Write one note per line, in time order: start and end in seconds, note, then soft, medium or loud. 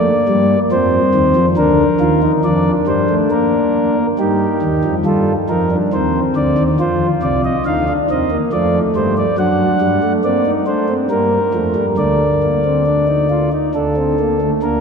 0.00 0.12 A3 medium
0.00 0.57 A#3 medium
0.00 0.60 D5 medium
0.29 0.55 G2 medium
0.29 0.55 G3 medium
0.72 0.99 F2 medium
0.72 0.99 F3 medium
0.72 1.46 C4 medium
0.72 1.46 C5 medium
1.14 1.33 D#2 medium
1.14 1.33 D#3 medium
1.36 1.55 F2 loud
1.36 1.55 F3 medium
1.57 1.84 D2 medium
1.57 1.84 D3 loud
1.57 1.84 D4 medium
1.57 2.32 A#4 medium
2.00 2.27 D#2 medium
2.00 2.28 D#3 medium
2.00 2.19 F4 medium
2.23 2.41 D#4 medium
2.44 2.72 F2 medium
2.44 2.72 F3 medium
2.44 3.95 D4 medium
2.44 2.72 D5 medium
2.87 3.06 G2 medium
2.87 3.07 G3 medium
2.87 3.15 C5 medium
3.10 3.29 A3 medium
3.31 4.06 A#3 medium
3.31 4.07 A#4 medium
4.19 4.46 G2 medium
4.19 4.46 G3 medium
4.19 4.94 D#4 medium
4.19 4.95 G4 medium
4.62 4.81 D#2 medium
4.62 4.81 D#3 medium
4.84 5.03 F2 medium
4.84 5.03 F3 medium
5.06 5.33 G2 medium
5.06 5.33 G3 medium
5.06 5.33 F4 medium
5.06 5.33 A4 medium
5.49 5.77 F2 medium
5.49 5.76 F3 medium
5.49 5.68 D#4 medium
5.49 5.76 A#4 medium
5.71 5.90 D4 medium
5.93 6.20 D#2 medium
5.93 6.20 D#3 medium
5.93 6.68 C4 medium
5.93 6.20 C5 medium
6.36 6.55 D2 medium
6.36 6.55 D3 medium
6.36 6.63 D5 medium
6.58 6.77 D#2 medium
6.58 6.77 D#3 medium
6.80 7.07 F2 medium
6.80 7.07 F3 medium
6.80 7.54 F4 medium
6.80 7.07 C5 medium
7.23 7.50 C2 medium
7.23 7.50 C3 medium
7.23 7.42 D5 medium
7.44 7.63 D#5 medium
7.66 7.93 D2 medium
7.66 7.93 D3 medium
7.66 7.85 D#4 medium
7.66 7.93 F5 medium
7.88 8.07 D4 medium
8.10 8.37 D#2 medium
8.10 8.37 D#3 medium
8.10 8.29 C4 medium
8.10 8.37 D#5 medium
8.31 8.50 A#3 medium
8.53 8.79 F2 medium
8.53 8.79 F3 medium
8.53 9.27 A3 medium
8.53 8.79 D5 medium
8.96 9.23 G2 medium
8.96 9.23 G3 medium
8.96 9.14 C5 medium
9.17 9.36 D5 medium
9.38 9.65 F#2 medium
9.38 9.65 F#3 medium
9.38 10.12 D4 medium
9.38 10.12 F#5 medium
9.81 10.00 G2 medium
9.81 10.00 G3 medium
10.03 10.22 A3 medium
10.24 10.51 A#3 medium
10.24 10.43 C4 medium
10.24 10.51 D5 medium
10.46 10.64 D#4 medium
10.67 10.94 A3 medium
10.67 10.86 D4 medium
10.67 10.94 C5 medium
10.89 11.07 C4 medium
11.10 11.38 G2 medium
11.10 11.38 G3 medium
11.10 11.38 A#3 medium
11.10 11.86 A#4 medium
11.54 11.73 F2 medium
11.54 11.73 F3 medium
11.54 11.81 A3 medium
11.76 11.95 G2 medium
11.76 11.95 G3 medium
11.98 13.50 D2 medium
11.98 13.50 D3 medium
11.98 12.25 A3 medium
11.98 13.50 D5 medium
12.43 12.62 A#3 medium
12.65 12.84 C4 medium
12.86 13.05 D4 medium
13.08 13.27 D#4 medium
13.30 13.49 F4 medium
13.52 13.71 D#4 medium
13.75 14.50 D2 medium
13.75 14.50 D3 medium
13.75 13.94 D4 medium
13.75 14.50 A4 medium
13.96 14.15 C4 medium
14.19 14.38 A#3 medium
14.41 14.60 A3 medium
14.63 14.80 D2 medium
14.63 14.80 D3 medium
14.63 14.80 A#3 medium
14.63 14.80 A#4 medium